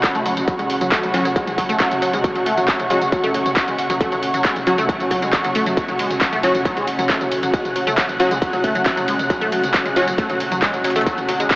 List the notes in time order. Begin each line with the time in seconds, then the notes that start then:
Already playing: C#4 F#4 F#5 C#6
0.03 F#3, kick, snare, clap, closed hi-hat, tambourine, shaker
0.15 F#1 A3, snare, closed hi-hat, mid tom, tambourine
0.26 F#1 F#3, open hi-hat, shaker
0.37 F#1, closed hi-hat, mid tom, tambourine
0.48 F#3, kick, closed hi-hat, tambourine, shaker
0.59 G#3, closed hi-hat, mid tom, tambourine
0.70 F#1, open hi-hat, shaker
0.81 F#1 F#3, closed hi-hat, mid tom, tambourine
0.92 A3, kick, snare, clap, closed hi-hat, tambourine, shaker
1.03 F#3, snare, closed hi-hat, mid tom, tambourine
1.14 F#1 F#3 C#4 F#4, open hi-hat, shaker
1.25 F#1 F#3, closed hi-hat, mid tom, tambourine
1.36 G#3, kick, closed hi-hat, tambourine, shaker
1.47 closed hi-hat, mid tom, tambourine
1.58 F#1 F#3, kick, snare, open hi-hat, shaker
1.69 F#1 A3, closed hi-hat, mid tom, tambourine
1.80 F#3, kick, snare, clap, closed hi-hat, tambourine, shaker
1.91 F#1, closed hi-hat, mid tom, tambourine
2.02 F#1 F#3, open hi-hat, shaker
2.13 F#1 G#3, closed hi-hat, mid tom, tambourine
2.24 kick, closed hi-hat, tambourine, shaker
2.35 F#3, snare, closed hi-hat, mid tom, tambourine
2.46 F#1 A3, open hi-hat, shaker
2.57 F#1 F#3, snare, closed hi-hat, mid tom, tambourine
2.68 kick, snare, clap, closed hi-hat, tambourine, shaker
2.80 F#3, snare, closed hi-hat, mid tom, tambourine
2.90 F#1 F#3 G#3 C#4 F#4, open hi-hat, shaker
3.02 F#1, closed hi-hat, mid tom, tambourine
3.12 F#3, kick, closed hi-hat, tambourine, shaker
3.24 A3, closed hi-hat, mid tom, tambourine
3.34 F#1 F#3, snare, open hi-hat, shaker
3.46 F#1, closed hi-hat, mid tom, tambourine
3.56 F#3, kick, snare, clap, closed hi-hat, tambourine, shaker
3.68 F#1 G#3, snare, closed hi-hat, mid tom, tambourine
3.78 F#1, open hi-hat, shaker
3.90 F#1 F#3, closed hi-hat, mid tom, tambourine
4.01 A3, kick, closed hi-hat, tambourine, shaker
4.12 F#3, closed hi-hat, mid tom, tambourine
4.23 F#1, open hi-hat, shaker
4.34 F#1 F#3, closed hi-hat, mid tom, tambourine
4.45 G#3, kick, snare, clap, closed hi-hat, tambourine, shaker
4.56 snare, closed hi-hat, mid tom, tambourine
4.67 F#1 F#3 C#4 F#4, open hi-hat, shaker
4.78 F#1 A3, closed hi-hat, mid tom, tambourine
4.89 F#3, kick, closed hi-hat, tambourine, shaker
5.00 closed hi-hat, mid tom, tambourine
5.11 F#1 F#3, kick, snare, open hi-hat, shaker
5.22 F#1 G#3, closed hi-hat, mid tom, tambourine
5.33 kick, snare, clap, closed hi-hat, tambourine, shaker
5.44 F#1 F#3, closed hi-hat, mid tom, tambourine
5.55 F#1 A3, open hi-hat, shaker
5.66 F#1 F#3, closed hi-hat, mid tom, tambourine
5.77 kick, closed hi-hat, ride, tambourine, shaker
5.88 F#3, snare, closed hi-hat, mid tom, tambourine
5.99 F#1 G#3, open hi-hat, ride, shaker
6.10 F#1, snare, closed hi-hat, mid tom, tambourine
6.21 F#3, kick, snare, clap, closed hi-hat, ride, tambourine, shaker
6.33 A3, snare, closed hi-hat, mid tom, tambourine
6.43 F#1 F#3 C#4 F#4, open hi-hat, ride, shaker
6.55 F#1, closed hi-hat, mid tom, tambourine
6.65 F#3, kick, closed hi-hat, ride, tambourine, shaker
6.77 G#3, closed hi-hat, mid tom, tambourine
6.87 F#1, snare, open hi-hat, ride, shaker
6.94 F#6
6.99 F#1 F#3, closed hi-hat, mid tom, tambourine
7.09 A3, kick, snare, clap, closed hi-hat, ride, tambourine, shaker
7.21 F#1 F#3, snare, closed hi-hat, mid tom, tambourine
7.32 F#1, open hi-hat, ride, shaker
7.43 F#1 F#3, closed hi-hat, mid tom, tambourine
7.54 G#3, kick, closed hi-hat, ride, tambourine, shaker
7.65 closed hi-hat, mid tom, tambourine
7.76 F#1 F#3, open hi-hat, ride, shaker
7.87 F#1 A3, closed hi-hat, mid tom, tambourine
7.98 F#3, kick, snare, clap, closed hi-hat, ride, tambourine, shaker
8.09 snare, closed hi-hat, mid tom, tambourine
8.20 F#1 F#3 C#4 F#4, open hi-hat, ride, shaker
8.31 F#1 G#3, closed hi-hat, mid tom, tambourine
8.42 kick, closed hi-hat, ride, tambourine, shaker
8.53 F#3, closed hi-hat, mid tom, tambourine
8.64 F#1 A3, kick, snare, open hi-hat, ride, shaker
8.75 F#1 F#3, closed hi-hat, mid tom, tambourine
8.86 kick, snare, clap, closed hi-hat, ride, tambourine, shaker
8.97 F#1 F#3, closed hi-hat, mid tom, tambourine
9.08 F#1 G#3, open hi-hat, ride, shaker
9.19 F#1, closed hi-hat, mid tom, tambourine
9.30 F#3, kick, closed hi-hat, ride, tambourine, shaker
9.41 A3, snare, closed hi-hat, mid tom, tambourine
9.52 F#1 F#3, open hi-hat, ride, shaker
9.63 F#1, snare, closed hi-hat, mid tom, tambourine
9.74 F#3, kick, snare, clap, closed hi-hat, ride, tambourine, shaker
9.85 G#3, snare, closed hi-hat, mid tom, tambourine
9.96 F#1 F#3 C#4 F#4, open hi-hat, ride, shaker
10.07 F#1 F#3, closed hi-hat, mid tom, tambourine
10.18 A3, kick, closed hi-hat, ride, tambourine, shaker
10.30 F#3, closed hi-hat, mid tom, tambourine
10.40 F#1, snare, open hi-hat, ride, shaker
10.52 F#1 F#3, closed hi-hat, mid tom, tambourine
10.62 G#3, kick, snare, clap, closed hi-hat, ride, tambourine, shaker
10.74 F#1, snare, closed hi-hat, mid tom, tambourine
10.84 F#1 F#3, snare, open hi-hat, ride, shaker
10.90 snare, shaker
10.96 F#1 A3, snare, closed hi-hat, mid tom, tambourine, shaker
11.01 snare, shaker
11.06 F#3, kick, closed hi-hat, ride, tambourine, shaker
11.18 closed hi-hat, mid tom, tambourine
11.29 F#1 F#3, snare, open hi-hat, ride, shaker
11.40 F#1 G#3, closed hi-hat, mid tom, tambourine
11.51 kick, clap, closed hi-hat, ride, tambourine, shaker